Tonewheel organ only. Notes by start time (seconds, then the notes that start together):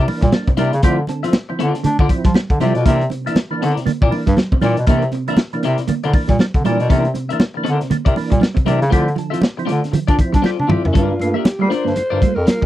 0.00 C3
0.08 E3 A#3 D4
0.34 A#3 D4
0.49 C3
0.59 A#3 D4
0.84 F3 C4 E4
1.09 D3
1.24 F3 C4 E4
1.49 F3 C4 E4
1.75 D3
1.85 C4 E4
2.00 D3
2.10 F3 C4 E4
2.35 C4 E4
2.51 D3
2.60 F3 C4 E4
2.85 E3 A#3 D4
3.12 C3
3.26 E3 A#3 D4
3.51 E3 A#3 D4
3.77 C3
3.86 A#3 D4
4.01 C3
4.11 E3 A#3 D4
4.36 A#3 D4
4.51 C3
4.61 E3 A#3 D4
4.87 E3 A#3 D4
5.12 C3
5.28 E3 A#3 D4
5.53 E3 A#3 D4
5.79 C3
5.89 A#3 D4
6.04 C3
6.14 E3 A#3 D4
6.41 A#3 D4
6.56 C3
6.66 E3 A#3 D4
6.91 E3 A#3 D4
7.16 C3
7.32 E3 A#3 D4
7.57 E3 A#3 D4
7.82 C3
7.91 A#3 D4
8.07 C3
8.17 E3 A#3 D4
8.42 A#3 D4
8.58 C3
8.67 E3 A#3 D4
8.93 F3 C4 E4
9.19 D3
9.34 F3 C4 E4
9.59 F3 C4 E4
9.85 D3
9.94 C4 E4
10.10 D3
10.20 F3 C4 E4
10.46 C4 E4
10.61 D3
10.71 F3 C4 E4
10.96 G2 D3
11.12 A#3 F4
11.21 A3 A#3 F4
11.61 A3 A#3 F4
11.88 G2 D3
11.98 A#3 F4
12.12 G2 D3
12.22 A3 A#3 F4
12.48 A#3 F4